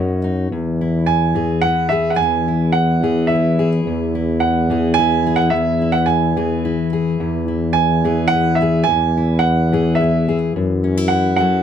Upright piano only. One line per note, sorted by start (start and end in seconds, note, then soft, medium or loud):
0.00 0.17 D#5 medium
1.06 1.64 G#5 medium
1.62 1.90 F#5 medium
1.89 2.11 E5 medium
2.10 2.17 F#5 medium
2.16 2.74 G#5 medium
2.72 3.30 F#5 medium
3.27 3.67 E5 medium
4.40 4.98 F#5 medium
4.94 5.38 G#5 loud
5.36 5.52 F#5 medium
5.50 5.94 E5 medium
5.92 6.06 F#5 medium
6.06 6.87 G#5 medium
7.73 8.32 G#5 medium
8.28 8.55 F#5 medium
8.55 8.83 E5 medium
8.84 9.43 G#5 medium
9.39 9.98 F#5 medium
9.95 10.36 E5 medium
11.08 11.35 F#5 medium
11.36 11.63 F#5 medium